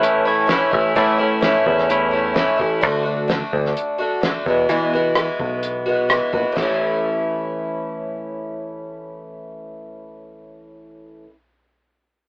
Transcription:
0.00 0.49 A2 medium
0.00 0.26 E3 medium
0.00 0.47 E3 medium
0.00 0.28 A3 medium
0.00 0.27 A3 medium
0.00 0.26 C#4 medium
0.00 0.25 C#4 medium
0.00 0.24 E4 medium
0.00 0.25 B4 medium
0.00 closed hi-hat medium
0.04 0.24 E4 medium
0.25 0.48 A3 soft
0.25 0.48 C#4 medium
0.25 0.49 E4 medium
0.25 0.72 C#5 medium
0.47 0.71 E3 medium
0.47 0.72 A3 medium
0.47 0.72 C#4 medium
0.47 0.70 E4 medium
0.47 snare loud
0.47 closed hi-hat medium
0.71 0.92 A1 medium
0.71 0.96 A3 soft
0.71 0.96 C#4 soft
0.71 0.95 E4 medium
0.71 0.96 E5 medium
0.71 kick medium
0.95 1.19 A2 medium
0.95 1.55 A2 medium
0.95 1.19 E3 medium
0.95 1.20 A3 medium
0.95 1.18 C#4 medium
0.95 1.17 E4 medium
0.95 1.19 E5 medium
0.95 kick loud
0.95 closed hi-hat medium
1.18 1.41 A3 soft
1.18 1.41 C#4 medium
1.18 1.42 E4 medium
1.40 2.11 E3 medium
1.40 2.12 A3 medium
1.40 2.12 C#4 medium
1.40 2.10 E4 medium
1.40 snare loud
1.40 closed hi-hat medium
1.66 2.44 E2 medium
1.66 1.89 A3 soft
1.66 1.90 C#4 medium
1.66 1.90 E4 medium
1.66 kick medium
1.78 snare soft
1.89 2.36 A2 medium
1.89 2.34 E3 medium
1.89 2.14 A3 medium
1.89 2.13 C#4 medium
1.89 2.11 E4 loud
1.89 closed hi-hat medium
2.11 2.34 A3 soft
2.11 2.36 C#4 soft
2.11 2.35 E4 soft
2.34 2.58 E3 medium
2.34 2.59 A3 medium
2.34 2.58 C#4 medium
2.34 2.56 E4 medium
2.34 snare loud
2.34 closed hi-hat medium
2.57 2.83 A1 medium
2.57 2.81 A3 soft
2.57 2.82 C#4 medium
2.57 2.81 E4 medium
2.57 kick medium
2.81 3.41 D2 medium
2.81 3.05 D3 medium
2.81 3.06 A3 medium
2.81 3.04 D4 medium
2.81 3.02 F#4 medium
2.81 kick loud
2.81 closed hi-hat medium
3.03 3.28 A3 soft
3.03 3.29 D4 soft
3.03 3.28 F#4 soft
3.28 3.98 D3 medium
3.28 3.99 A3 medium
3.28 3.99 D4 medium
3.28 3.97 F#4 medium
3.28 snare loud
3.28 closed hi-hat medium
3.53 3.72 D2 medium
3.53 kick medium
3.66 snare soft
3.77 closed hi-hat medium
3.98 4.22 A3 soft
3.98 4.22 D4 soft
3.98 4.22 F#4 medium
4.21 4.45 D3 soft
4.21 4.46 A3 medium
4.21 4.46 D4 medium
4.21 4.45 F#4 medium
4.21 snare loud
4.21 closed hi-hat medium
4.46 4.66 E2 medium
4.46 4.69 E3 soft
4.46 4.69 G#3 soft
4.46 4.69 B3 soft
4.46 4.69 F#4 soft
4.46 kick medium
4.69 4.93 E2 medium
4.69 4.93 B2 medium
4.69 5.28 E3 medium
4.69 4.93 E3 medium
4.69 4.93 G#3 medium
4.69 4.93 B3 medium
4.69 4.92 F#4 medium
4.69 closed hi-hat medium
4.93 5.14 E3 soft
4.93 5.16 G#3 soft
4.93 5.17 B3 soft
4.93 5.16 F#4 medium
5.15 5.86 E3 medium
5.15 5.87 G#3 medium
5.15 5.86 B3 medium
5.15 5.85 F#4 medium
5.15 cross-stick medium
5.15 closed hi-hat medium
5.40 6.18 B1 medium
5.40 kick medium
5.63 closed hi-hat medium
5.86 6.08 E3 soft
5.86 6.09 G#3 soft
5.86 6.10 B3 soft
5.86 6.09 F#4 soft
6.09 6.33 E3 medium
6.09 6.34 G#3 medium
6.09 6.33 B3 medium
6.09 6.32 F#4 medium
6.09 cross-stick medium
6.09 closed hi-hat soft
6.33 6.43 A#1 medium
6.33 6.54 E3 soft
6.33 6.57 G#3 soft
6.33 6.57 B3 soft
6.33 6.56 F#4 soft
6.33 kick medium
6.52 11.24 A2 medium
6.52 11.27 E3 medium
6.57 11.24 A1 medium
6.57 11.29 A3 medium
6.57 snare medium
6.57 floor tom medium
6.57 china medium
6.61 11.33 C#4 medium
6.61 11.34 E4 medium

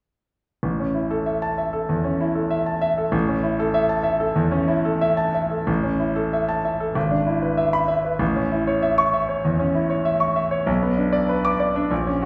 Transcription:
0.63 1.86 A1 medium
0.79 1.04 C#4 soft
0.95 1.20 E4 soft
1.11 1.36 A4 medium
1.26 1.52 E5 soft
1.42 1.67 A5 medium
1.58 1.83 E5 soft
1.73 1.98 A4 medium
1.89 2.14 E2 soft
2.04 2.29 C#4 soft
2.21 2.45 E4 soft
2.35 2.60 A4 soft
2.50 2.75 E5 medium
2.66 2.91 A5 medium
2.81 3.07 E5 medium
2.98 3.22 A4 soft
3.12 4.33 A1 medium
3.28 3.53 C#4 soft
3.43 3.68 E4 medium
3.60 3.84 A4 medium
3.74 3.99 E5 medium
3.89 4.14 A5 medium
4.03 4.30 E5 medium
4.20 4.46 A4 medium
4.36 4.62 E2 medium
4.51 4.78 C#4 medium
4.68 4.95 E4 medium
4.85 5.12 A4 medium
5.01 5.28 E5 medium
5.17 5.45 A5 medium
5.34 5.61 E5 medium
5.51 5.68 A4 soft
5.67 6.91 A1 medium
5.83 6.09 C#4 soft
6.00 6.26 E4 medium
6.16 6.42 A4 medium
6.33 6.58 E5 medium
6.49 6.74 A5 medium
6.65 6.90 E5 soft
6.80 6.96 A4 medium
6.95 8.17 G#1 medium
7.11 7.36 D4 soft
7.27 7.52 E4 soft
7.42 7.67 B4 soft
7.57 7.83 E5 medium
7.73 7.99 B5 medium
7.88 8.14 E5 medium
8.04 8.20 B4 soft
8.19 9.41 A1 medium
8.35 8.61 C#4 soft
8.52 8.77 E4 medium
8.67 8.92 C#5 medium
8.82 9.07 E5 medium
8.98 9.23 C#6 medium
9.14 9.39 E5 medium
9.29 9.54 C#5 medium
9.45 9.70 E2 medium
9.59 9.84 C#4 medium
9.75 10.00 E4 medium
9.90 10.15 C#5 soft
10.05 10.30 E5 medium
10.20 10.46 C#6 medium
10.36 10.61 E5 medium
10.51 10.67 C#5 medium
10.66 11.86 B1 medium
10.82 11.07 B3 medium
10.97 11.22 D4 soft
11.12 11.38 D5 medium
11.29 11.54 B4 medium
11.45 11.69 D6 medium
11.60 11.85 D5 medium
11.76 11.91 D4 medium
11.91 12.25 A#1 medium
12.07 12.25 C#4 medium
12.22 12.25 F#4 medium

